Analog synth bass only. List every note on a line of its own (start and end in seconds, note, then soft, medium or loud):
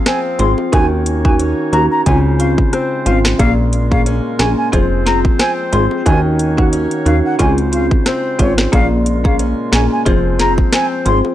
0.39 0.55 G#1 medium
0.73 1.54 D#2 loud
1.73 1.88 D#2 medium
2.06 2.63 C#2 loud
3.06 3.34 G#1 medium
3.39 4.21 A#1 loud
4.39 4.55 A#1 medium
4.73 5.29 F1 loud
5.73 5.89 G#1 medium
6.06 6.87 D#2 loud
7.06 7.22 D#2 loud
7.40 7.96 C#2 loud
8.39 8.68 G#1 medium
8.73 9.54 A#1 loud
9.73 9.89 A#1 medium
10.06 10.63 F1 loud
11.06 11.22 G#1 medium